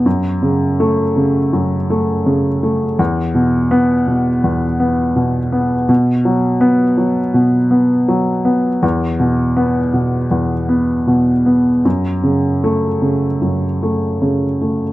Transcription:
\new Staff \with { instrumentName = "Grand piano" } { \clef bass \time 4/4 \key fis \dorian \tempo 4 = 81 << { r4 a4 r2 | r4 b4 r2 | r4 b4 r2 | r4 b4 r2 |
r4 a4 r2 | } \\ { fis,8 cis4 cis8 fis,8 a8 cis8 a8 | e,8 b,4 b,8 e,8 b8 b,8 b8 | b,8 fis4 fis8 b,8 b8 fis8 b8 | e,8 b,4 b,8 e,8 b8 b,8 b8 |
fis,8 cis4 cis8 fis,8 a8 cis8 a8 | } >> }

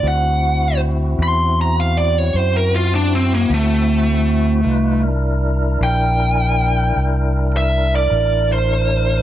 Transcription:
<<
  \new Staff \with { instrumentName = "Lead electric guitar" } { \time 12/8 \key d \dorian \tempo 4. = 52 fis''4 r8 c'''8 bes''16 f''16 d''16 cis''16 c''16 bes'16 f'16 d'16 c'16 bes16 a4.~ | a8 r4 g''2~ g''16 e''8 d''8. c''4 | }
  \new Staff \with { instrumentName = "Tonewheel organ" } { \time 12/8 \key d \dorian <c' e' fis'>1. | <ees' f' b'>8 <d' e' bes'>1~ <d' e' bes'>4. | }
  \new Staff \with { instrumentName = "Fingered electric bass" } { \clef bass \time 12/8 \key d \dorian d,4. e,4. fis,4. d,4. | c,4. bes,,4. c,4. a,,4. | }
>>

